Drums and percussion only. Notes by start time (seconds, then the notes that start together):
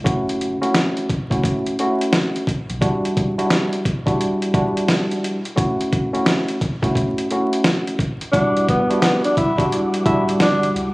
0.06 kick, closed hi-hat
0.29 closed hi-hat
0.41 closed hi-hat
0.63 closed hi-hat
0.75 snare, closed hi-hat
0.97 closed hi-hat
1.10 kick, closed hi-hat
1.31 kick, closed hi-hat
1.44 kick, closed hi-hat
1.66 closed hi-hat
1.79 closed hi-hat
2.01 closed hi-hat
2.13 snare, closed hi-hat
2.36 closed hi-hat
2.47 kick, closed hi-hat
2.70 closed hi-hat
2.82 kick, closed hi-hat
3.05 closed hi-hat
3.17 kick, closed hi-hat
3.39 closed hi-hat
3.50 snare, closed hi-hat
3.73 closed hi-hat
3.85 kick, closed hi-hat
4.07 kick, closed hi-hat
4.21 closed hi-hat
4.42 closed hi-hat
4.54 kick, closed hi-hat
4.77 closed hi-hat
4.88 snare, closed hi-hat
5.11 closed hi-hat
5.24 closed hi-hat
5.45 closed hi-hat
5.58 kick, closed hi-hat
5.81 closed hi-hat
5.93 kick, closed hi-hat
6.15 closed hi-hat
6.26 snare, closed hi-hat
6.48 closed hi-hat
6.61 kick, closed hi-hat
6.83 kick, closed hi-hat
6.95 kick, closed hi-hat
7.18 closed hi-hat
7.31 closed hi-hat
7.53 closed hi-hat
7.64 snare, closed hi-hat
7.87 closed hi-hat
7.99 kick, closed hi-hat
8.21 closed hi-hat
8.33 kick, closed hi-hat
8.57 closed hi-hat
8.68 kick, closed hi-hat
8.91 closed hi-hat
9.02 snare, closed hi-hat
9.24 closed hi-hat
9.37 kick, closed hi-hat
9.58 kick, closed hi-hat
9.72 closed hi-hat
9.94 closed hi-hat
10.06 kick, closed hi-hat
10.29 closed hi-hat
10.40 snare, closed hi-hat
10.63 closed hi-hat
10.76 closed hi-hat